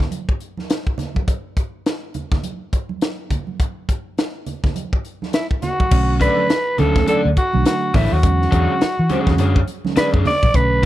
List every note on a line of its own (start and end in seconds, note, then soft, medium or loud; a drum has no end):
0.00 kick medium
0.00 snare soft
0.00 low conga medium
0.11 closed hi-hat medium
0.11 muted conga soft
0.11 high conga medium
0.29 kick medium
0.40 closed hi-hat medium
0.57 snare soft
0.57 high conga medium
0.70 snare loud
0.70 closed hi-hat medium
0.87 kick medium
0.98 snare soft
0.98 closed hi-hat medium
0.98 muted conga soft
0.98 low conga medium
1.15 kick medium
1.15 high conga medium
1.28 kick medium
1.28 closed hi-hat medium
1.57 kick medium
1.57 closed hi-hat medium
1.86 snare loud
1.86 closed hi-hat medium
2.14 closed hi-hat medium
2.14 muted conga soft
2.14 low conga medium
2.32 kick medium
2.32 snare soft
2.32 low conga medium
2.43 closed hi-hat medium
2.43 muted conga soft
2.43 high conga medium
2.73 kick medium
2.73 closed hi-hat medium
2.89 high conga medium
3.02 snare loud
3.02 closed hi-hat medium
3.30 kick medium
3.30 closed hi-hat medium
3.30 muted conga soft
3.30 low conga medium
3.47 high conga medium
3.60 kick loud
3.60 closed hi-hat medium
3.89 kick medium
3.89 closed hi-hat medium
3.89 muted conga soft
4.18 snare loud
4.18 closed hi-hat medium
4.18 muted conga soft
4.47 closed hi-hat medium
4.47 low conga medium
4.64 kick medium
4.64 snare soft
4.64 low conga medium
4.76 closed hi-hat medium
4.76 muted conga soft
4.76 high conga medium
4.93 kick medium
5.05 closed hi-hat medium
5.22 snare soft
5.22 high conga medium
5.33 5.47 E4 medium
5.33 snare loud
5.33 closed hi-hat medium
5.33 muted conga soft
5.51 kick medium
5.62 6.16 F#4 medium
5.62 snare soft
5.62 closed hi-hat medium
5.62 low conga medium
5.79 kick medium
5.79 high conga medium
5.91 6.27 B1 loud
5.91 6.48 D3 medium
5.91 6.48 F#3 medium
5.91 6.48 A3 medium
5.91 6.48 C#4 medium
5.91 kick loud
5.91 crash loud
5.91 muted conga soft
6.20 6.39 D4 medium
6.20 6.40 A4 loud
6.20 6.81 B4 loud
6.20 6.40 D5 loud
6.20 kick medium
6.20 closed hi-hat medium
6.20 muted conga soft
6.37 high conga medium
6.49 snare loud
6.49 closed hi-hat medium
6.49 muted conga soft
6.78 7.01 D2 medium
6.78 6.86 C#3 medium
6.78 7.27 F#3 medium
6.78 7.27 A3 medium
6.78 7.27 C#4 medium
6.78 6.98 D4 medium
6.78 6.98 A4 medium
6.78 7.08 A4 loud
6.78 6.98 C#5 loud
6.78 closed hi-hat medium
6.78 muted conga soft
6.78 low conga medium
6.85 7.30 D3 medium
6.96 kick loud
6.96 snare soft
6.96 low conga loud
7.07 7.26 D4 loud
7.07 7.27 A4 loud
7.07 7.21 A4 loud
7.07 7.27 D5 loud
7.07 muted fingered electric bass stroke medium
7.07 closed hi-hat loud
7.07 muted conga soft
7.07 high conga medium
7.25 7.34 D2 medium
7.37 7.64 F#4 medium
7.37 kick medium
7.37 closed hi-hat medium
7.53 7.63 B1 loud
7.53 7.98 D3 medium
7.53 7.98 F#3 medium
7.53 7.98 A3 medium
7.53 7.98 D4 medium
7.53 high conga medium
7.65 7.97 F#4 medium
7.65 snare loud
7.65 closed hi-hat loud
7.65 muted conga soft
7.94 8.08 A1 loud
7.94 8.13 D4 medium
7.94 8.14 E4 medium
7.94 8.14 A4 medium
7.94 8.14 C#5 loud
7.94 kick loud
7.94 open hi-hat medium
7.94 low conga loud
8.11 8.23 D#2 loud
8.11 9.58 F#4 medium
8.11 high conga medium
8.23 8.46 E2 loud
8.23 8.79 D3 medium
8.23 8.79 F#3 medium
8.23 8.79 G#3 medium
8.23 8.79 C#4 medium
8.23 kick loud
8.23 closed hi-hat medium
8.42 snare soft
8.51 8.66 E2 loud
8.51 8.71 D4 medium
8.51 8.71 G#4 medium
8.51 8.72 C#5 loud
8.51 kick medium
8.51 closed hi-hat medium
8.69 high conga medium
8.81 muted fingered electric bass stroke medium
8.81 snare loud
8.81 closed hi-hat medium
8.99 9.08 E3 medium
9.10 9.59 D3 loud
9.10 9.59 F#3 medium
9.10 9.59 G#3 medium
9.10 9.59 C#4 loud
9.10 9.32 D4 medium
9.10 9.32 G#4 medium
9.10 9.33 C#5 medium
9.10 closed hi-hat medium
9.10 low conga medium
9.27 9.39 E2 medium
9.27 kick medium
9.27 snare soft
9.27 low conga medium
9.38 9.61 F#2 medium
9.38 9.58 D4 medium
9.38 9.58 G#4 medium
9.38 9.59 C#5 medium
9.38 closed hi-hat medium
9.38 muted conga soft
9.38 high conga medium
9.56 kick medium
9.67 closed hi-hat medium
9.67 muted conga soft
9.85 10.29 D3 medium
9.85 10.29 F#3 medium
9.85 10.29 G#3 medium
9.85 10.29 C#4 medium
9.85 snare soft
9.85 high conga medium
9.96 10.12 D4 medium
9.96 10.13 G#4 medium
9.96 10.10 B4 loud
9.96 10.13 D5 medium
9.96 muted fingered electric bass stroke soft
9.96 snare loud
9.96 closed hi-hat loud
9.96 muted conga soft
10.14 10.23 F#2 medium
10.14 10.29 D4 medium
10.14 10.28 G#4 medium
10.14 10.28 C#5 medium
10.14 kick medium
10.25 10.57 D5 loud
10.25 snare soft
10.25 open hi-hat medium
10.25 muted conga soft
10.25 low conga loud
10.43 10.52 A#1 medium
10.43 kick medium
10.43 high conga medium
10.54 10.86 B1 medium
10.54 10.86 D3 medium
10.54 10.86 F#3 medium
10.54 10.86 A3 medium
10.54 10.86 C#4 medium
10.54 10.86 B4 loud
10.54 kick loud
10.54 closed hi-hat medium
10.54 muted conga soft